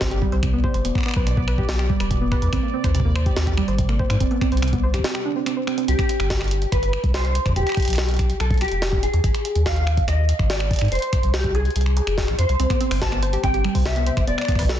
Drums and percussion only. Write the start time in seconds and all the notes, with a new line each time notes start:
0.01 kick, snare, closed hi-hat
0.11 closed hi-hat
0.22 kick
0.32 closed hi-hat
0.43 finger snap, kick, closed hi-hat
0.64 kick
0.74 closed hi-hat
0.85 closed hi-hat
0.95 finger snap, kick
0.98 finger snap
1.01 finger snap
1.03 finger snap
1.06 finger snap
1.08 finger snap
1.11 finger snap
1.14 finger snap, kick
1.27 finger snap, closed hi-hat
1.37 kick
1.48 finger snap
1.58 kick
1.69 snare, closed hi-hat
1.79 finger snap, closed hi-hat
1.90 kick
2.00 finger snap, closed hi-hat
2.11 kick, closed hi-hat
2.32 finger snap, kick
2.42 closed hi-hat
2.53 finger snap, kick, closed hi-hat
2.84 finger snap, kick, closed hi-hat
2.95 closed hi-hat
3.00 kick
3.16 finger snap
3.26 kick, closed hi-hat
3.37 finger snap, snare, closed hi-hat
3.47 kick, closed hi-hat
3.58 finger snap
3.68 closed hi-hat
3.78 kick, closed hi-hat
3.89 finger snap
3.99 kick
4.10 finger snap, closed hi-hat
4.20 kick, closed hi-hat
4.31 closed hi-hat
4.41 finger snap, kick
4.52 closed hi-hat
4.57 closed hi-hat
4.62 finger snap, closed hi-hat
4.68 closed hi-hat
4.73 kick, closed hi-hat
4.94 finger snap, kick, closed hi-hat
4.99 kick
5.04 snare, closed hi-hat
5.15 finger snap, closed hi-hat
5.46 finger snap, closed hi-hat
5.67 finger snap
5.78 closed hi-hat
5.88 closed hi-hat
5.99 finger snap, kick, closed hi-hat
6.09 closed hi-hat
6.20 finger snap, closed hi-hat
6.30 kick, snare, closed hi-hat
6.41 finger snap, closed hi-hat
6.44 closed hi-hat
6.48 closed hi-hat
6.51 closed hi-hat
6.62 closed hi-hat
6.72 finger snap, kick, closed hi-hat
6.83 closed hi-hat
6.93 finger snap
7.04 kick, closed hi-hat
7.14 finger snap, snare, closed hi-hat
7.25 closed hi-hat
7.35 closed hi-hat
7.46 finger snap, kick, closed hi-hat
7.49 kick
7.53 kick
7.56 kick, closed hi-hat
7.60 kick
7.63 finger snap, kick, closed hi-hat
7.69 finger snap
7.72 finger snap
7.75 finger snap, kick, closed hi-hat
7.80 closed hi-hat
7.82 closed hi-hat
7.85 finger snap, closed hi-hat
7.88 closed hi-hat
7.90 closed hi-hat
7.93 finger snap, closed hi-hat
7.96 snare, closed hi-hat
8.02 finger snap
8.09 closed hi-hat
8.11 closed hi-hat
8.14 closed hi-hat
8.16 finger snap, kick, closed hi-hat
8.19 closed hi-hat
8.30 closed hi-hat
8.40 finger snap, closed hi-hat
8.51 kick, closed hi-hat
8.54 closed hi-hat
8.58 finger snap, closed hi-hat
8.61 closed hi-hat
8.65 closed hi-hat
8.68 closed hi-hat
8.72 closed hi-hat
8.82 snare, closed hi-hat
8.92 kick, closed hi-hat
9.03 closed hi-hat
9.14 closed hi-hat
9.24 kick, closed hi-hat
9.34 finger snap, closed hi-hat
9.45 closed hi-hat
9.55 closed hi-hat
9.66 finger snap, kick, snare, closed hi-hat
9.76 closed hi-hat
9.87 finger snap
9.97 kick, closed hi-hat
10.08 finger snap, closed hi-hat
10.29 closed hi-hat
10.39 finger snap, kick
10.50 snare, closed hi-hat
10.60 finger snap
10.71 kick, closed hi-hat
10.73 closed hi-hat
10.76 closed hi-hat
10.79 finger snap, closed hi-hat
10.81 closed hi-hat
10.85 closed hi-hat
10.88 closed hi-hat
10.92 closed hi-hat
10.95 closed hi-hat
10.99 closed hi-hat
11.02 closed hi-hat
11.13 finger snap, kick, closed hi-hat
11.23 closed hi-hat
11.34 finger snap, snare, closed hi-hat
11.44 kick, closed hi-hat
11.55 closed hi-hat
11.65 closed hi-hat
11.70 closed hi-hat
11.76 closed hi-hat
11.81 closed hi-hat
11.86 finger snap
11.97 closed hi-hat
12.07 finger snap, closed hi-hat
12.18 kick, snare, closed hi-hat
12.28 finger snap, closed hi-hat
12.39 closed hi-hat
12.49 closed hi-hat
12.60 closed hi-hat
12.70 finger snap, kick, closed hi-hat
12.81 closed hi-hat
12.91 finger snap, open hi-hat
13.02 kick, snare, closed hi-hat
13.12 finger snap, closed hi-hat
13.23 closed hi-hat
13.33 closed hi-hat
13.44 finger snap, kick, closed hi-hat
13.54 closed hi-hat
13.65 finger snap
13.75 kick, closed hi-hat, open hi-hat
13.86 finger snap, snare, closed hi-hat
13.96 closed hi-hat
14.07 closed hi-hat
14.17 finger snap, kick, closed hi-hat
14.27 closed hi-hat
14.38 finger snap
14.41 finger snap
14.45 finger snap, kick
14.48 finger snap, closed hi-hat
14.52 finger snap, kick
14.55 finger snap
14.59 finger snap, kick, open hi-hat
14.69 snare